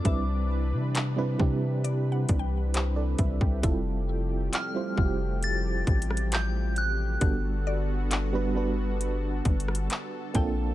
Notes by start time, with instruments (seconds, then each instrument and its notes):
Already playing: analog synth pad C3 D4, synth bell D6
0.04 808-style bass C2, analog synth pad E3 G3 B4, fm electric piano G3 C4 D4 E4 B4, synth pluck E5, kick, closed hi-hat
0.73 808-style bass C3
0.95 clap, closed hi-hat
1.16 fm electric piano G3 C4 D4 E4 B4
1.39 808-style bass C3, fm electric piano G3 C4 D4 E4 G4, kick
1.84 synth pluck D5, closed hi-hat
2.12 synth pluck F#5
2.29 808-style bass C2, kick, closed hi-hat
2.39 synth pluck G5
2.74 fm electric piano G4 C5, clap, closed hi-hat
2.96 fm electric piano A4 D5
3.18 808-style bass C2, fm electric piano B4 E5, kick, closed hi-hat
3.41 808-style bass C2, fm electric piano D5 G5, kick
3.62 808-style bass F1, analog synth pad F3 A3 G4, fm electric piano G3 C4 E4 F4 A4, synth pluck E4, kick, closed hi-hat
4.53 synth bell F6, clap, closed hi-hat
4.74 fm electric piano G3 C4 E4 F4 C5
4.96 808-style bass F1, fm electric piano G3 C4 E4 F4 F#4, kick
5.05 fm electric piano G4
5.43 synth bell A6, closed hi-hat
5.87 808-style bass A1, kick, closed hi-hat
6.02 closed hi-hat
6.11 cross-stick
6.17 closed hi-hat
6.32 synth bell G6, clap, closed hi-hat
6.76 synth bell F#6, closed hi-hat
7.20 808-style bass G1, analog synth pad D3 B3 F#4 A4, fm electric piano G3 B3 D4 F#4 A4, kick, closed hi-hat
7.67 synth pluck D5
8.11 clap, closed hi-hat
8.33 fm electric piano G3 B3 D4 F#4 B4
8.55 fm electric piano G3 B3 D4 F#4 B4
9.01 closed hi-hat
9.45 808-style bass G1, kick, closed hi-hat
9.60 closed hi-hat
9.68 cross-stick
9.75 closed hi-hat
9.90 clap, closed hi-hat
10.34 808-style bass A#1, analog synth pad C3 F3 A#3 D4, fm electric piano A#3 C4 D4 F4 A4, synth pluck G5, kick, closed hi-hat